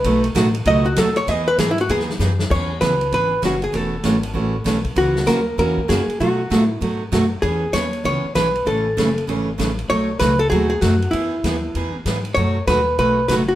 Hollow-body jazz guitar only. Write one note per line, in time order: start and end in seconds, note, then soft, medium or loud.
0.00 0.22 B4 medium
0.68 0.85 D#5 loud
0.86 0.98 F#4 medium
0.98 1.16 A4 medium
1.17 1.29 C#5 loud
1.29 1.47 D#5 loud
1.48 1.58 B4 loud
1.59 1.69 G#4 medium
1.71 1.80 E4 medium
1.81 1.90 F#4 medium
1.91 2.02 G#4 loud
2.51 2.80 C#5 medium
2.81 3.13 B4 loud
3.14 3.42 B4 loud
3.45 3.63 F#4 medium
3.64 3.75 G#4 medium
3.75 4.86 A4 loud
4.98 5.29 F#4 medium
5.27 5.58 A#4 loud
5.59 5.90 A#4 loud
5.89 6.20 G#4 medium
6.20 6.64 F#4 medium
6.64 6.78 E4 medium
7.42 7.74 G#4 medium
7.73 8.04 C#5 loud
8.05 8.35 C#5 loud
8.35 8.67 B4 medium
8.67 9.24 A4 medium
9.90 10.19 C#5 loud
10.20 10.38 B4 loud
10.39 10.49 A4 medium
10.50 10.68 G#4 loud
10.70 10.81 G#4 medium
10.81 11.13 F#4 medium
11.11 12.00 E4 medium
12.35 12.67 C#5 loud
12.68 12.96 B4 loud
12.99 13.27 B4 loud
13.28 13.34 B4 loud
13.48 13.55 F#4 medium